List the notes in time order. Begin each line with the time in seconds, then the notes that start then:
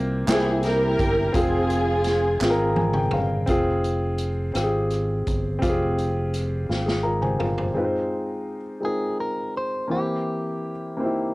Already playing: C2 C3 A#3 C4 F4 G4 C5
0.27 C2 C3 A#3 C4 E4 G#4 C5 G5, snare, clap, closed hi-hat
0.63 E4 G4 A#4, snare, closed hi-hat
0.99 G1, kick, closed hi-hat
1.32 F1 C4 F4 G#4, kick, closed hi-hat
1.70 closed hi-hat
2.04 snare, closed hi-hat
2.40 G#1 C4 F4 G#4, snare, clap
2.50 A#4
2.76 G#5, high tom
2.93 G5, mid tom
3.11 G1 F5, mid tom
3.46 F1 C4 F4 G#4, kick, closed hi-hat
3.84 closed hi-hat
4.18 closed hi-hat
4.54 G#1 C4 F4 G4, cross-stick, closed hi-hat
4.64 G#4
4.90 cross-stick, closed hi-hat
5.27 G1, kick, closed hi-hat
5.59 C4 F4, kick, closed hi-hat
5.63 F1 G4
5.69 G#4
5.98 closed hi-hat
6.34 cross-stick, closed hi-hat
6.69 G#1 C4 F4, snare
6.86 G#4, snare
7.03 F4 A#4 A#5
7.21 G4 C5 G#5, mid tom
7.39 G1 F4 A#4 F5, mid tom
7.58 G4 C5, floor tom
7.74 G#3 C4 D#4 F4 B4
7.84 C5
8.80 G#3 C4 D#4 F4
8.85 G#4 A#4
9.20 A#4
9.57 C5
9.88 E3 A#3 C4 E4 G4
9.92 C5
10.97 A#3 C4 D#4 G4 C5
11.05 E4